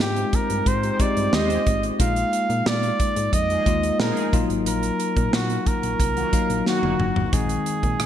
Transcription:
Already playing: G#3 C4 D#4 F4 G5
0.00 G#2 G4, snare
0.16 closed hi-hat
0.33 A#4, kick, closed hi-hat
0.50 G2, closed hi-hat
0.66 G#2 C5, kick, closed hi-hat
0.83 G#3 G4 C5, closed hi-hat
0.99 G#3 C4 D#4 G4 D5, kick, closed hi-hat
1.16 G2, closed hi-hat
1.33 D#2 G#3 G4 C5 D#5, snare
1.50 closed hi-hat
1.66 G#1, kick, closed hi-hat
1.83 closed hi-hat
1.99 A#1 G#3 A#3 D#4 F4 F5, kick, closed hi-hat
2.16 closed hi-hat
2.33 closed hi-hat
2.50 A#2, closed hi-hat
2.66 A#2 D5, snare
2.83 closed hi-hat
3.00 kick, closed hi-hat
3.16 G#2, closed hi-hat
3.33 F2 D#5, kick, closed hi-hat
3.50 F3 D#4 G#4, closed hi-hat
3.66 D#2 G#3 A#3 D#4 F4, kick, closed hi-hat
3.83 closed hi-hat
4.00 A#2 F3 D#4 G#4 A#4, snare
4.17 closed hi-hat
4.32 A#1 F#3 A#3 D#4 F4, kick, closed hi-hat
4.50 G#1, closed hi-hat
4.66 A#1 A#4, closed hi-hat
4.83 closed hi-hat
5.00 closed hi-hat
5.16 A#2, kick, closed hi-hat
5.33 A#2 F#4, snare
5.50 closed hi-hat
5.66 A#4, kick, closed hi-hat
5.83 A#1, closed hi-hat
6.00 C2, kick, closed hi-hat
6.16 D#3 A#3 F#4, closed hi-hat
6.32 A#1 F#3 A#3 D#4 F5, kick, closed hi-hat
6.50 A#1, closed hi-hat
6.66 D#3 A#3 F#4, snare
6.83 F1, high tom
7.00 F#1, mid tom
7.16 G#1, floor tom
7.32 A#1 D#3 G#3 C4 D#4 G#4, kick, closed hi-hat
7.49 closed hi-hat
7.66 closed hi-hat
7.83 A#2, kick, closed hi-hat
8.00 A#2, cross-stick, closed hi-hat

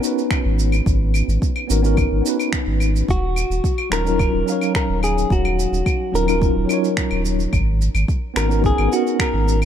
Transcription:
0.00 B3 C#4 D#4, shaker
0.04 F#4 B4
0.18 shaker
0.31 finger snap, kick, claves, shaker
0.45 G#1
0.59 shaker
0.72 claves, shaker
0.86 G#1, kick, shaker
1.14 claves, shaker
1.28 G#1, shaker
1.42 kick, shaker
1.56 claves
1.67 G#1 B3 C#4 D#4 F#4 A#4, shaker
1.82 B3 C#4 D#4 F#4 A#4, shaker
1.97 kick, claves, shaker
2.12 G#1
2.21 B3 C#4 D#4
2.26 F#4 B4, shaker
2.40 claves, shaker
2.53 finger snap, kick, shaker
2.67 G#1
2.80 claves, shaker
2.96 shaker
3.08 D#1 F#4, kick, shaker
3.36 claves, shaker
3.50 D#1, shaker
3.64 kick, shaker
3.78 claves
3.90 D#1 F#3 C#4 D#4 F4 A#4, finger snap, shaker
3.94 A#4
4.04 F#3 C#4 D#4 F4 A#4, shaker
4.19 kick, claves, shaker
4.34 D#1
4.44 F#3 C#4
4.48 D#4 F5, shaker
4.52 C#5
4.61 claves, shaker
4.75 A#4, finger snap, kick, shaker
4.89 D#1
5.03 G#4, claves, shaker
5.18 shaker
5.30 D#1 F#4, kick, shaker
5.45 claves
5.59 shaker
5.72 D#1, shaker
5.86 kick, claves, shaker
6.12 D#1 F#3 C#4 D#4 F4 A#4, shaker
6.16 A#4
6.26 F#3 C#4 D#4 F4 A#4, claves, shaker
6.42 kick, shaker
6.56 D#1
6.65 F#3 C#4 D#4, claves
6.70 F4 C#5, shaker
6.84 shaker
6.97 finger snap, kick, shaker
7.11 D#1, claves
7.25 shaker
7.40 shaker
7.53 G#1, kick, claves, shaker
7.81 shaker
7.95 G#1, claves, shaker
8.08 kick, shaker
8.34 G#1 B3 C#4 D#4 F#4 A#4, finger snap, claves, shaker
8.38 A#4
8.48 B3 C#4 D#4 F#4, shaker
8.52 A#4
8.64 G#4, kick, shaker
8.78 G#1, claves
8.88 B3 C#4 D#4
8.92 F#4 A#4, shaker
9.07 shaker
9.19 A#4, finger snap, kick, claves, shaker
9.34 G#1
9.48 shaker
9.62 claves

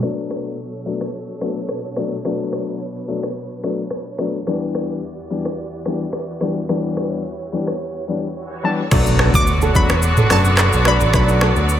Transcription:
0.02 B2 F#3 A3 B3 D4 A4 C#5, finger snap, cross-stick
0.31 finger snap, cross-stick
0.86 F#3 A3 B3 D4
1.01 finger snap, cross-stick
1.41 F#3 A3 B3 D4, finger snap, cross-stick
1.69 finger snap, cross-stick
1.96 F#3 A3 B3 D4, finger snap, cross-stick
2.25 F#3 A3 B3 D4 B4, finger snap, cross-stick
2.53 finger snap, cross-stick
3.08 F#3 A3 B3 D4
3.23 finger snap, cross-stick
3.64 F#3 A3 B3 D4, finger snap, cross-stick
3.91 finger snap, cross-stick
4.18 F#3 A3 B3 D4, finger snap, cross-stick
4.47 E2 E3 G3 B3 D4 F#4 G4 D5, finger snap, cross-stick
4.75 finger snap, cross-stick
5.30 E3 G3 B3 D4
5.45 finger snap, cross-stick
5.86 E3 G3 B3 D4, finger snap, cross-stick
6.13 finger snap, cross-stick
6.41 E3 G3 B3 D4, finger snap, cross-stick
6.69 E3 G3 B3 D4 C#5, finger snap, cross-stick
6.97 finger snap, cross-stick
7.52 E3 G3 B3 D4
7.67 finger snap, cross-stick
8.08 E3 G3 B3 D4
8.63 E3 G3 B3 D4 A5
8.91 B1 D3 F#3 A3 B3 D4 F#4 A4 D5, finger snap, kick, cross-stick, crash, impact, shaker
9.06 shaker
9.19 A4, finger snap, cross-stick
9.34 D2 B4 D6, kick, shaker
9.47 shaker
9.62 A4, shaker
9.75 E2 F#3 A3 B3 D4 F#4 B5, kick, shaker
9.89 finger snap, cross-stick, shaker
10.02 shaker
10.17 A4, mid tom, shaker
10.30 F#2 F#3 A3 B3 D4 B4 A5, finger snap, cross-stick, open hi-hat, shaker
10.45 shaker
10.57 finger snap, cross-stick, clap, shaker
10.73 B1, shaker
10.85 F#3 A3 B3 D4 D5 B5, finger snap, cross-stick
11.01 A1, shaker
11.14 B1 F#3 A3 B3 D4 D5 B5, finger snap, kick, cross-stick, shaker
11.29 shaker
11.41 A4, finger snap, cross-stick
11.56 D2 B4, shaker
11.69 shaker

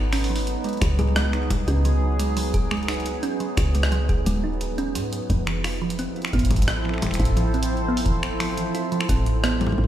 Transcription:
Already playing: G#1 F#3 B3 D#4 B4
0.13 C#4, finger snap, open hi-hat
0.24 open hi-hat
0.28 F#3 G#4
0.36 open hi-hat
0.47 closed hi-hat
0.64 G#3, closed hi-hat
0.69 closed hi-hat
0.73 closed hi-hat
0.77 closed hi-hat
0.82 C#2 F#3, finger snap, kick, closed hi-hat
0.90 closed hi-hat
0.94 closed hi-hat
0.99 G#4, closed hi-hat, low conga
1.16 G#3, cross-stick, closed hi-hat
1.33 D#4, finger snap, closed hi-hat
1.50 kick, closed hi-hat, low conga
1.68 C#2 C#4, closed hi-hat
1.85 F#3, closed hi-hat
2.19 G#3, closed hi-hat
2.37 F#3, open hi-hat
2.54 G#4, kick, closed hi-hat
2.71 G#3, finger snap, closed hi-hat
2.77 closed hi-hat
2.83 closed hi-hat
2.88 D#4, finger snap, closed hi-hat, open hi-hat
2.94 closed hi-hat
3.00 closed hi-hat
3.06 closed hi-hat
3.23 C#4, closed hi-hat
3.40 F#3, closed hi-hat
3.57 C#2, finger snap, kick, closed hi-hat
3.75 G#3, closed hi-hat
3.83 cross-stick
3.92 F#3, closed hi-hat
4.09 G#4, kick, closed hi-hat
4.26 D#1 G#3, closed hi-hat
4.44 D#4
4.61 closed hi-hat
4.78 C#4, closed hi-hat
4.95 G#2 F#3, closed hi-hat
5.13 closed hi-hat
5.30 F1 F3, kick, closed hi-hat
5.43 E3 C4, finger snap, closed hi-hat
5.48 E4
5.64 F4, finger snap, open hi-hat
5.82 F3
5.88 A4, closed hi-hat
5.99 C4, closed hi-hat
6.16 closed hi-hat
6.22 finger snap, closed hi-hat
6.28 C5, closed hi-hat
6.33 A1 B3, kick, closed hi-hat
6.38 kick, closed hi-hat
6.42 kick, closed hi-hat
6.46 kick
6.51 E3, kick, closed hi-hat, low conga
6.55 kick, closed hi-hat
6.59 kick, closed hi-hat
6.63 kick
6.68 cross-stick, closed hi-hat
6.85 F3, finger snap
6.89 finger snap
6.94 finger snap
6.98 finger snap
7.02 E3, finger snap, kick, closed hi-hat, low conga
7.07 finger snap
7.11 finger snap, kick, closed hi-hat
7.15 finger snap
7.19 A1 F4, kick, closed hi-hat
7.25 kick, closed hi-hat
7.37 F3, closed hi-hat
7.54 C4, closed hi-hat
7.63 closed hi-hat
7.66 closed hi-hat
7.77 closed hi-hat
7.88 B3
7.97 open hi-hat
8.06 E3, kick, closed hi-hat
8.23 finger snap, closed hi-hat
8.40 F3, finger snap, open hi-hat
8.57 E3, closed hi-hat
8.75 F4, closed hi-hat
8.92 F3, closed hi-hat
9.01 finger snap
9.09 A1 C4, kick, closed hi-hat
9.26 closed hi-hat
9.44 B3, cross-stick, closed hi-hat
9.61 E3, closed hi-hat, low conga
9.67 low conga
9.72 low conga
9.78 A1, low conga
9.84 low conga

